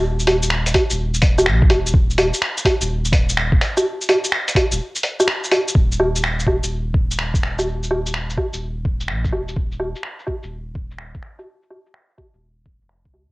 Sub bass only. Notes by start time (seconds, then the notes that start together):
Already playing: D#1
0.91 D#1
1.47 A#1
1.70 D#1
2.81 D#1
4.72 D#1
5.75 D#1
6.63 D#1
7.42 D#1
8.53 D#1
9.09 A#1
9.32 D#1
10.44 D#1
12.34 D#1
12.82 F1
13.05 C#2